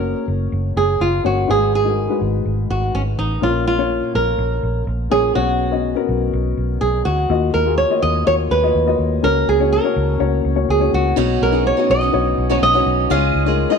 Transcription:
Already playing: fingered electric bass F#1, upright piano A#3 C#4 F#4 C#5, nylon-string guitar A#4
0.28 fingered electric bass F#1
0.52 fingered electric bass F#1
0.76 fingered electric bass F#1, nylon-string guitar G#4
1.00 fingered electric bass F#1, nylon-string guitar F4
1.23 fingered electric bass G1, upright piano A#3 C#4 F#4 C#5, nylon-string guitar F#4
1.48 fingered electric bass G#1, upright piano G#2 G#3 D#4 F#4 B4, nylon-string guitar G#4
1.75 nylon-string guitar G#4
1.84 upright piano G#3 D#4 F#4 A#4
2.08 upright piano G#3 D#4 F#4 B4
2.21 fingered electric bass G#1
2.45 fingered electric bass G#1
2.70 fingered electric bass G#1, nylon-string guitar F#4
2.94 fingered electric bass G#1, nylon-string guitar C#4
3.18 fingered electric bass A1, nylon-string guitar D#4
3.41 fingered electric bass A#1, upright piano A#2 A#3 C#4 F4 C#5, nylon-string guitar F4
3.67 nylon-string guitar F4
3.78 upright piano A#3 C#4 F4 C#5
4.15 fingered electric bass A#1, nylon-string guitar A#4
4.38 fingered electric bass A#1
4.63 fingered electric bass A#1
4.87 fingered electric bass A#1
5.10 fingered electric bass A#1, upright piano A#3 C#4 F4 C#5, nylon-string guitar G#4
5.34 fingered electric bass B1, upright piano B2 B3 C#4 F#4 C#5, nylon-string guitar F#4
5.70 upright piano B3 C#4 F#4 D#5
5.95 upright piano B3 C#4 F#4 A#4
6.09 fingered electric bass B1
6.33 fingered electric bass B1
6.57 fingered electric bass B1
6.81 fingered electric bass B1, nylon-string guitar G#4
7.05 fingered electric bass D2, nylon-string guitar F#4
7.29 fingered electric bass D#2, upright piano D#3 A#3 F4 F#4 D#5
7.54 fingered electric bass D#2, nylon-string guitar A#4
7.65 upright piano A#3 F4 F#4 G#4
7.78 nylon-string guitar C#5
7.89 upright piano A#3 F4 F#4 D#5
8.02 fingered electric bass D#2, nylon-string guitar D#5
8.25 fingered electric bass D#2, upright piano A#3 F4 F#4 C#5, nylon-string guitar C#5
8.51 fingered electric bass D#2, nylon-string guitar B4
8.62 upright piano A#3 F4 F#4 D#5
8.75 fingered electric bass D#2
8.86 upright piano A#3 F4 F#4 D#5
8.99 fingered electric bass D#2
9.22 fingered electric bass C#2, upright piano C#3 A#3 C#4 F#4 C#5, nylon-string guitar A#4
9.48 fingered electric bass C#2, nylon-string guitar G#4
9.59 upright piano A#3 C#4 F#4 C#5
9.72 nylon-string guitar A#4
9.83 upright piano A#3 C#4 F#4 C#5
9.96 fingered electric bass C#2
10.18 fingered electric bass C#2, upright piano A#3 C#4 F#4 C#5
10.44 fingered electric bass C#2
10.55 upright piano A#3 C#4 F#4 C#5
10.68 fingered electric bass C#2, nylon-string guitar G#4
10.79 upright piano A#3 C#4 F#4 C#5
10.93 fingered electric bass C#2, nylon-string guitar F#4
11.16 fingered electric bass B1, steel-string acoustic guitar B2 B3 C#4 D#4 F#4, upright piano B2 B3 D#4 F#4 C#5
11.42 fingered electric bass B1, nylon-string guitar A#4
11.52 upright piano B3 D#4 F#4 G#4, steel-string acoustic guitar C#4 D#4 F#4
11.67 nylon-string guitar C#5
11.76 upright piano B3 D#4 F#4 C#5, steel-string acoustic guitar C#4 D#4 F#4
11.90 fingered electric bass B1, nylon-string guitar D#5
12.01 steel-string acoustic guitar C#4 D#4 F#4
12.12 fingered electric bass B1, upright piano B3 D#4 F#4 C#5
12.38 fingered electric bass B1
12.49 steel-string acoustic guitar B2 B3 C#4 D#4 F#4, upright piano B3 D#4 F#4 C#5, nylon-string guitar C#5
12.62 fingered electric bass B1, nylon-string guitar D#5
12.73 upright piano B3 D#4 F#4 C#5, steel-string acoustic guitar C#4 D#4 F#4
12.86 fingered electric bass B1
13.09 fingered electric bass C#2, upright piano C#3 G#3 D#4 F4 C#5, steel-string acoustic guitar C#4 F4 G#4 D#5, nylon-string guitar F5
13.35 fingered electric bass C#2
13.45 upright piano G#3 D#4 F4 A#4, steel-string acoustic guitar F4 G#4 D#5
13.69 upright piano G#3 D#4 F4 D#5, steel-string acoustic guitar F4 G#4 D#5

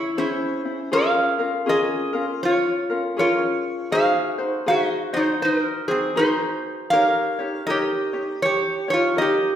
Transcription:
Already playing: ukulele C#4 E4 G#4 C#5, resonator guitar played with a steel bar E4 C#5
0.17 ukulele C#4 E4 G#4, resonator guitar played with a steel bar E4 C5
0.65 ukulele C#4 E4
0.92 ukulele C#4 F4 G#4 A#4, resonator guitar played with a steel bar G#4 F5
1.39 ukulele C#4 F4 A#4
1.66 ukulele C#4 F4 G#4 A#4, resonator guitar played with a steel bar D#5
1.70 resonator guitar played with a steel bar G#4
2.13 ukulele C#4 F4 A#4
2.43 resonator guitar played with a steel bar F4 C#5
2.90 ukulele C#4 F4 A#4
3.17 ukulele C#4 F4 G#4 A#4, resonator guitar played with a steel bar F4 C#5
3.92 ukulele D#4 F#4 G#4 C5, resonator guitar played with a steel bar G#4 F5
4.38 ukulele D#4 F#4 C5
4.66 ukulele D#4 F#4 G#4 C5, resonator guitar played with a steel bar F#4 E5
4.86 resonator guitar played with a steel bar D#5
5.13 ukulele D#4 F#4 C5, resonator guitar played with a steel bar D#4 C5
5.42 resonator guitar played with a steel bar D#4 B4
5.60 resonator guitar played with a steel bar A#4
5.88 resonator guitar played with a steel bar C4 G#4, ukulele D#4 F#4 C5
6.15 ukulele D#4 F#4 G#4 C5, resonator guitar played with a steel bar D#4 C5
6.90 ukulele D#4 G4 A#4 C#5, resonator guitar played with a steel bar A#4 F5
7.39 ukulele D#4 G4 C#5
7.67 ukulele D#4 G4 A#4 C#5, resonator guitar played with a steel bar G4 D#5
8.13 ukulele D#4 G4 C#5
8.42 resonator guitar played with a steel bar G4 C#5
8.88 ukulele D#4 G4 C#5, resonator guitar played with a steel bar C#5
8.93 resonator guitar played with a steel bar F4
9.16 ukulele D#4 G4 A#4 C#5, resonator guitar played with a steel bar D#5
9.22 resonator guitar played with a steel bar G4

